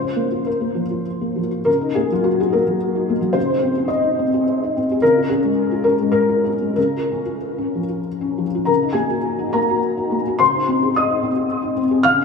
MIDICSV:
0, 0, Header, 1, 2, 480
1, 0, Start_track
1, 0, Tempo, 594648
1, 1351, Time_signature, 3, 2, 24, 8
1, 1815, Tempo, 550459
1, 4695, Tempo, 584795
1, 5175, Tempo, 636943
1, 7095, Tempo, 569801
1, 8535, Tempo, 544465
1, 10169, End_track
2, 0, Start_track
2, 0, Title_t, "Felt piano"
2, 0, Program_c, 0, 0
2, 0, Note_on_c, 0, 49, 38
2, 0, Note_on_c, 0, 72, 67
2, 9, Note_on_c, 0, 65, 29
2, 45, Control_c, 0, 64, 127
2, 130, Note_on_c, 0, 58, 35
2, 206, Note_off_c, 0, 65, 0
2, 252, Note_on_c, 0, 65, 33
2, 328, Note_off_c, 0, 58, 0
2, 374, Note_off_c, 0, 72, 0
2, 374, Note_on_c, 0, 70, 38
2, 489, Note_on_c, 0, 58, 29
2, 604, Note_on_c, 0, 53, 30
2, 646, Note_off_c, 0, 65, 0
2, 691, Note_off_c, 0, 58, 0
2, 729, Note_on_c, 0, 65, 28
2, 809, Note_off_c, 0, 53, 0
2, 864, Note_off_c, 0, 70, 0
2, 977, Note_on_c, 0, 58, 29
2, 1096, Note_on_c, 0, 53, 28
2, 1127, Note_off_c, 0, 65, 0
2, 1178, Note_off_c, 0, 58, 0
2, 1220, Note_on_c, 0, 65, 32
2, 1296, Note_off_c, 0, 53, 0
2, 1323, Note_off_c, 0, 49, 0
2, 1331, Note_on_c, 0, 70, 67
2, 1339, Note_on_c, 0, 49, 44
2, 1345, Note_off_c, 0, 65, 0
2, 1366, Control_c, 0, 64, 0
2, 1462, Note_on_c, 0, 63, 36
2, 1515, Control_c, 0, 64, 127
2, 1574, Note_off_c, 0, 70, 0
2, 1575, Note_on_c, 0, 68, 66
2, 1588, Note_on_c, 0, 58, 32
2, 1650, Note_off_c, 0, 63, 0
2, 1695, Note_off_c, 0, 68, 0
2, 1710, Note_on_c, 0, 54, 37
2, 1714, Note_on_c, 0, 65, 54
2, 1771, Note_off_c, 0, 58, 0
2, 1808, Note_on_c, 0, 66, 55
2, 1823, Note_off_c, 0, 65, 0
2, 1935, Note_off_c, 0, 66, 0
2, 1946, Note_on_c, 0, 63, 32
2, 1949, Note_on_c, 0, 68, 63
2, 2059, Note_on_c, 0, 70, 65
2, 2068, Note_off_c, 0, 68, 0
2, 2072, Note_on_c, 0, 58, 37
2, 2094, Note_off_c, 0, 54, 0
2, 2140, Note_off_c, 0, 63, 0
2, 2181, Note_on_c, 0, 54, 38
2, 2264, Note_off_c, 0, 58, 0
2, 2428, Note_on_c, 0, 63, 37
2, 2552, Note_on_c, 0, 58, 37
2, 2568, Note_off_c, 0, 54, 0
2, 2618, Note_off_c, 0, 63, 0
2, 2652, Note_on_c, 0, 54, 43
2, 2740, Note_off_c, 0, 58, 0
2, 2744, Note_off_c, 0, 49, 0
2, 2756, Note_on_c, 0, 72, 78
2, 2765, Note_on_c, 0, 49, 50
2, 2778, Note_off_c, 0, 54, 0
2, 2783, Note_off_c, 0, 70, 0
2, 2801, Control_c, 0, 64, 0
2, 2904, Note_on_c, 0, 63, 39
2, 2923, Control_c, 0, 64, 127
2, 3019, Note_on_c, 0, 60, 41
2, 3098, Note_off_c, 0, 63, 0
2, 3145, Note_on_c, 0, 68, 42
2, 3217, Note_off_c, 0, 60, 0
2, 3237, Note_on_c, 0, 75, 64
2, 3255, Note_off_c, 0, 72, 0
2, 3367, Note_on_c, 0, 63, 40
2, 3508, Note_on_c, 0, 60, 42
2, 3537, Note_off_c, 0, 68, 0
2, 3574, Note_off_c, 0, 63, 0
2, 3638, Note_on_c, 0, 68, 42
2, 3704, Note_off_c, 0, 60, 0
2, 3898, Note_on_c, 0, 63, 41
2, 3975, Note_off_c, 0, 75, 0
2, 4010, Note_on_c, 0, 60, 39
2, 4016, Note_off_c, 0, 68, 0
2, 4073, Note_off_c, 0, 63, 0
2, 4141, Note_on_c, 0, 68, 44
2, 4179, Note_off_c, 0, 49, 0
2, 4187, Note_off_c, 0, 60, 0
2, 4233, Note_on_c, 0, 70, 81
2, 4237, Control_c, 0, 64, 0
2, 4240, Note_off_c, 0, 68, 0
2, 4245, Note_on_c, 0, 49, 52
2, 4365, Note_on_c, 0, 65, 39
2, 4394, Control_c, 0, 64, 127
2, 4461, Note_off_c, 0, 70, 0
2, 4471, Note_on_c, 0, 68, 54
2, 4480, Note_on_c, 0, 61, 40
2, 4539, Note_off_c, 0, 65, 0
2, 4598, Note_on_c, 0, 56, 37
2, 4658, Note_off_c, 0, 61, 0
2, 4829, Note_on_c, 0, 65, 36
2, 4931, Note_on_c, 0, 70, 67
2, 4938, Note_off_c, 0, 68, 0
2, 4946, Note_on_c, 0, 61, 35
2, 4966, Note_off_c, 0, 56, 0
2, 5012, Note_off_c, 0, 65, 0
2, 5067, Note_on_c, 0, 56, 37
2, 5133, Note_off_c, 0, 61, 0
2, 5147, Note_off_c, 0, 70, 0
2, 5159, Note_on_c, 0, 70, 75
2, 5289, Note_on_c, 0, 65, 35
2, 5398, Note_off_c, 0, 70, 0
2, 5403, Note_on_c, 0, 68, 43
2, 5415, Note_on_c, 0, 61, 28
2, 5435, Note_off_c, 0, 56, 0
2, 5476, Note_off_c, 0, 65, 0
2, 5538, Note_on_c, 0, 56, 33
2, 5602, Note_off_c, 0, 61, 0
2, 5626, Note_off_c, 0, 49, 0
2, 5645, Note_on_c, 0, 70, 55
2, 5646, Note_off_c, 0, 68, 0
2, 5654, Note_off_c, 0, 56, 0
2, 5655, Note_on_c, 0, 49, 45
2, 5665, Control_c, 0, 64, 0
2, 5787, Control_c, 0, 64, 127
2, 5801, Note_on_c, 0, 65, 32
2, 5914, Note_on_c, 0, 61, 34
2, 5987, Note_off_c, 0, 65, 0
2, 6020, Note_on_c, 0, 65, 35
2, 6105, Note_off_c, 0, 61, 0
2, 6265, Note_on_c, 0, 61, 33
2, 6391, Note_on_c, 0, 53, 33
2, 6410, Note_off_c, 0, 65, 0
2, 6458, Note_off_c, 0, 61, 0
2, 6495, Note_on_c, 0, 65, 32
2, 6580, Note_off_c, 0, 53, 0
2, 6625, Note_off_c, 0, 70, 0
2, 6738, Note_on_c, 0, 61, 32
2, 6866, Note_on_c, 0, 53, 34
2, 6885, Note_off_c, 0, 65, 0
2, 6934, Note_off_c, 0, 61, 0
2, 6992, Note_on_c, 0, 65, 33
2, 7052, Note_off_c, 0, 53, 0
2, 7070, Note_off_c, 0, 49, 0
2, 7072, Note_on_c, 0, 82, 58
2, 7085, Note_on_c, 0, 70, 53
2, 7090, Note_on_c, 0, 49, 51
2, 7101, Note_off_c, 0, 65, 0
2, 7113, Control_c, 0, 64, 0
2, 7217, Note_on_c, 0, 63, 37
2, 7251, Control_c, 0, 64, 127
2, 7298, Note_on_c, 0, 80, 63
2, 7307, Note_on_c, 0, 68, 53
2, 7308, Note_on_c, 0, 58, 36
2, 7314, Note_off_c, 0, 70, 0
2, 7324, Note_off_c, 0, 82, 0
2, 7409, Note_off_c, 0, 63, 0
2, 7444, Note_on_c, 0, 66, 41
2, 7514, Note_off_c, 0, 58, 0
2, 7689, Note_on_c, 0, 63, 39
2, 7770, Note_off_c, 0, 68, 0
2, 7799, Note_off_c, 0, 80, 0
2, 7806, Note_on_c, 0, 82, 74
2, 7809, Note_on_c, 0, 70, 48
2, 7815, Note_on_c, 0, 58, 33
2, 7836, Note_off_c, 0, 66, 0
2, 7887, Note_off_c, 0, 63, 0
2, 7949, Note_on_c, 0, 66, 37
2, 8010, Note_off_c, 0, 58, 0
2, 8182, Note_on_c, 0, 63, 35
2, 8301, Note_on_c, 0, 58, 36
2, 8328, Note_off_c, 0, 66, 0
2, 8372, Note_off_c, 0, 63, 0
2, 8434, Note_on_c, 0, 66, 41
2, 8490, Note_off_c, 0, 58, 0
2, 8498, Note_off_c, 0, 70, 0
2, 8500, Note_off_c, 0, 49, 0
2, 8529, Note_on_c, 0, 84, 79
2, 8530, Note_off_c, 0, 82, 0
2, 8541, Note_on_c, 0, 72, 56
2, 8545, Note_off_c, 0, 66, 0
2, 8549, Note_on_c, 0, 49, 48
2, 8553, Control_c, 0, 64, 0
2, 8673, Note_on_c, 0, 63, 38
2, 8693, Control_c, 0, 64, 127
2, 8789, Note_on_c, 0, 60, 41
2, 8861, Note_off_c, 0, 63, 0
2, 8918, Note_on_c, 0, 68, 42
2, 8979, Note_off_c, 0, 60, 0
2, 8992, Note_off_c, 0, 72, 0
2, 9020, Note_off_c, 0, 84, 0
2, 9038, Note_on_c, 0, 87, 73
2, 9045, Note_on_c, 0, 75, 54
2, 9157, Note_on_c, 0, 63, 40
2, 9273, Note_on_c, 0, 60, 45
2, 9297, Note_off_c, 0, 68, 0
2, 9344, Note_off_c, 0, 63, 0
2, 9387, Note_on_c, 0, 68, 39
2, 9461, Note_off_c, 0, 60, 0
2, 9617, Note_on_c, 0, 63, 42
2, 9716, Note_off_c, 0, 75, 0
2, 9741, Note_on_c, 0, 60, 44
2, 9748, Note_off_c, 0, 87, 0
2, 9765, Note_off_c, 0, 68, 0
2, 9809, Note_off_c, 0, 63, 0
2, 9871, Note_on_c, 0, 68, 52
2, 9930, Note_off_c, 0, 60, 0
2, 9948, Note_off_c, 0, 49, 0
2, 9981, Note_on_c, 0, 89, 91
2, 9984, Note_off_c, 0, 68, 0
2, 9993, Note_on_c, 0, 77, 72
2, 9995, Control_c, 0, 64, 0
2, 9999, Note_on_c, 0, 49, 58
2, 10097, Note_on_c, 0, 61, 43
2, 10123, Control_c, 0, 64, 127
2, 10169, Note_off_c, 0, 49, 0
2, 10169, Note_off_c, 0, 61, 0
2, 10169, Note_off_c, 0, 77, 0
2, 10169, Note_off_c, 0, 89, 0
2, 10169, End_track
0, 0, End_of_file